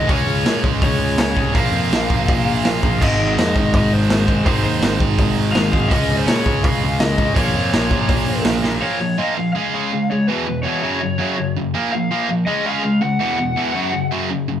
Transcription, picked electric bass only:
0.10 0.26 C#2 loud
0.26 0.44 C#2 medium
0.45 0.62 A#2 loud
0.64 0.81 C#2 loud
0.82 0.99 C#2 medium
0.99 1.17 C#2 medium
1.18 1.35 C#2 medium
1.37 1.54 C2 medium
1.56 1.71 A#1 medium
1.72 1.89 F2 medium
1.90 2.07 A#1 loud
2.10 2.27 A#1 loud
2.28 2.45 A#1 medium
2.46 2.63 A#1 loud
2.64 2.81 A#1 medium
2.83 3.00 A#1 medium
3.02 3.18 G#1 medium
3.19 3.36 G#1 medium
3.37 3.53 F2 loud
3.56 3.72 G#1 medium
3.74 3.90 G#1 loud
3.92 4.09 G#1 medium
4.10 4.26 G#1 medium
4.28 4.45 G#1 medium
4.46 4.63 G#1 loud
4.64 4.81 D#2 medium
4.82 4.99 G#1 loud
5.01 5.17 G#1 loud
5.19 5.35 G#1 loud
5.37 5.54 G#1 loud
5.55 5.71 G#1 medium
5.73 5.90 G#1 loud
5.92 6.08 C#2 loud
6.11 6.27 C#2 loud
6.29 6.45 A#2 medium
6.46 6.63 C#2 loud
6.64 6.81 C#2 medium
6.84 7.00 C#2 medium
7.02 7.18 C#2 medium
7.19 7.36 C#2 medium
7.36 7.53 A#1 loud
7.55 7.72 F2 loud
7.74 7.90 A#1 medium
7.91 8.08 A#1 loud
8.09 8.26 A#1 medium
8.27 8.44 A#1 medium
8.46 8.63 A#1 medium
8.64 8.81 A#1 medium

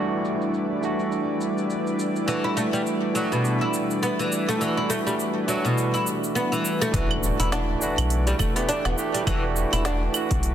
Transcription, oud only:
2.28 2.43 E3 medium
2.44 2.56 E4 medium
2.57 2.66 A3 medium
2.73 2.81 G3 medium
3.15 3.31 F#3 medium
3.32 3.59 B2 medium
3.61 3.73 E4 medium
4.03 4.19 B3 medium
4.19 4.47 E3 medium
4.49 4.60 A3 loud
4.61 4.76 E3 medium
4.77 4.89 E4 medium
4.90 4.99 A3 medium
5.07 5.14 G3 medium
5.48 5.64 F#3 medium
5.65 5.92 B2 medium
5.94 6.06 E4 medium
6.35 6.51 B3 medium
6.52 6.80 E3 medium
6.82 6.93 A3 loud
6.94 7.10 E3 medium
7.40 7.52 E4 medium
7.52 7.68 D4 medium
8.27 8.34 G3 medium
8.39 8.54 A3 medium
8.56 8.68 B3 medium
8.69 8.85 D4 medium
8.85 8.97 B3 medium
9.14 9.21 G3 medium
9.27 9.43 E3 loud
9.73 9.85 E4 medium
9.85 10.01 D4 medium

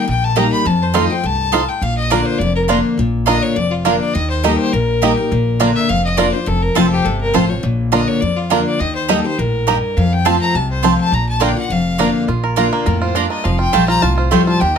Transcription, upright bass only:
0.08 0.48 A#1 medium
0.65 1.05 F2 loud
1.24 1.63 C2 medium
1.81 2.21 A#1 medium
2.39 2.80 F1 medium
2.98 3.38 A#1 medium
3.56 3.96 F1 medium
4.15 4.55 D#2 loud
4.73 5.13 A#1 medium
5.31 5.71 A#1 loud
5.89 6.29 F1 medium
6.47 6.67 F1 loud
6.76 7.01 F1 medium
7.05 7.30 G1 medium
7.34 7.59 A1 medium
7.63 8.03 A#1 loud
8.22 8.62 F2 medium
8.80 9.20 D#2 loud
9.38 9.78 A#1 medium
9.97 10.36 F2 loud
10.54 10.94 C2 medium
11.12 11.52 A#1 loud
11.70 12.10 F1 medium
12.28 12.68 A#1 medium
12.87 13.26 F2 medium
13.45 13.65 F1 loud
13.75 13.99 A#1 medium
14.03 14.28 C2 medium
14.32 14.56 D2 medium
14.61 14.78 D#2 loud

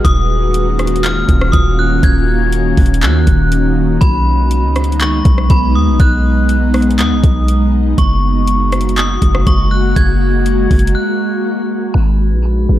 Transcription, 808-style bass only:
0.05 1.25 D#1 loud
1.29 1.52 D#1 loud
1.53 2.01 D#1 loud
2.03 2.74 D#1 loud
2.77 3.04 D#1 loud
3.02 3.26 D#2 loud
3.27 3.98 D#1 loud
4.01 4.65 B1 loud
4.63 5.22 C#2 medium
5.25 5.49 B1 loud
5.50 5.76 B1 loud
5.75 5.89 D#2 loud
5.87 5.99 B1 loud
6.00 7.00 B1 loud
6.99 7.13 D#2 loud
7.11 7.23 B1 loud
7.24 7.95 B1 loud
7.98 9.18 F#1 loud
9.22 9.46 F#1 loud
9.47 9.94 F#1 loud
9.96 10.68 F#1 loud
10.71 10.96 F#1 loud
11.95 12.34 G#1 loud
12.32 12.67 A#1 loud
12.69 12.79 G#1 loud

